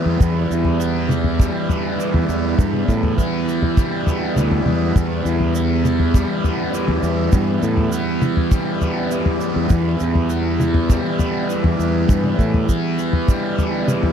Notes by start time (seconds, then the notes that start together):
Already playing: E2 E3 G3 B3 E4 B4
0.06 E2
0.20 E2, kick, floor tom, shaker
0.51 E2, shaker
0.65 floor tom
0.80 B3, shaker
1.09 E3, mid tom, shaker
1.24 floor tom
1.39 G3, kick, shaker
1.69 B3, floor tom, shaker
1.99 E3, shaker
2.14 E2, floor tom
2.28 E2 B3, shaker
2.58 E2 G2, kick, floor tom, shaker
2.73 mid tom
2.88 A2, kick, shaker
3.03 floor tom
3.18 B3, kick, shaker
3.48 E3, shaker
3.62 floor tom
3.77 G3, kick, shaker
4.07 B3, floor tom, shaker
4.36 D2 E3, mid tom, shaker
4.51 floor tom
4.66 E2 B3, mid tom
4.96 E2, kick, floor tom, shaker
5.25 E2, shaker
5.40 floor tom
5.55 B3, shaker
5.84 E3, mid tom, shaker
6.00 floor tom
6.14 G3, kick, shaker
6.44 B3, floor tom, shaker
6.73 E3, shaker
6.88 E2, floor tom
7.03 E2 B3, shaker
7.32 E2 G2, kick, floor tom, shaker
7.63 A2, shaker
7.77 floor tom
7.92 B3, shaker
8.22 E3, mid tom, shaker
8.37 floor tom
8.52 G3, kick, shaker
8.81 B3, floor tom, shaker
9.11 E3, shaker
9.26 floor tom
9.41 B3, shaker
9.56 E2
9.70 E2, kick, floor tom, shaker
10.00 E2, shaker
10.15 floor tom
10.30 B3, shaker
10.60 E3, mid tom, shaker
10.74 floor tom
10.90 G3, kick, shaker
11.19 B3, floor tom, shaker
11.49 E3, shaker
11.64 E2, floor tom
11.79 E2 B3, shaker
12.08 E2 G2, kick, floor tom, shaker
12.24 mid tom
12.39 A2, kick, shaker
12.54 floor tom
12.69 B3, kick, shaker
12.98 E3, shaker
13.13 floor tom
13.28 G3, kick, shaker
13.58 B3, floor tom, shaker
13.88 E3, mid tom, shaker
14.03 floor tom